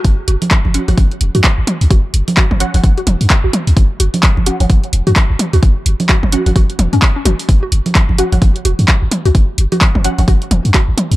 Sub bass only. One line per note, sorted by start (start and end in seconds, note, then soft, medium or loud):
0.05 0.13 F#1 loud
0.28 0.37 F#1 medium
0.65 0.78 F#1 medium
0.88 0.94 F#1 loud
0.98 1.06 F#1 loud
1.21 1.30 E1 medium
1.35 1.41 F#2 medium
1.58 1.64 F#1 medium
1.81 1.87 C#2 medium
1.91 1.99 F#1 loud
2.14 2.23 F#1 medium
2.51 2.64 F#1 medium
2.74 2.80 F#1 loud
2.84 2.92 F#1 loud
3.07 3.16 E1 medium
3.21 3.27 F#2 medium
3.44 3.50 F#1 medium
3.67 3.73 C#2 medium
3.77 3.85 F#1 loud
4.00 4.09 F#1 medium
4.37 4.50 F#1 medium
4.60 4.66 F#1 loud
4.70 4.79 F#1 loud
4.93 5.02 E1 loud
5.07 5.13 F#2 medium
5.30 5.36 F#1 medium
5.53 5.59 C#2 medium
5.63 5.72 F#1 medium
5.86 5.95 F#1 medium
6.23 6.36 F#1 medium
6.46 6.52 F#1 loud
6.56 6.65 F#1 loud
6.79 6.88 E1 medium
6.93 6.99 F#2 medium
7.25 7.34 F#1 medium
7.49 7.58 F#1 loud
7.72 7.81 F#1 medium
8.09 8.22 F#1 medium
8.32 8.38 F#1 loud
8.42 8.51 F#1 loud
8.65 8.74 E1 loud
8.79 8.85 F#2 medium
9.02 9.08 F#1 medium
9.25 9.31 C#2 medium
9.35 9.44 F#1 loud
9.58 9.67 F#1 medium
9.95 10.08 F#1 medium
10.18 10.24 F#1 loud
10.28 10.37 F#1 loud
10.51 10.60 E1 loud
10.65 10.71 F#2 medium
10.88 10.94 F#1 medium
11.11 11.16 C#2 medium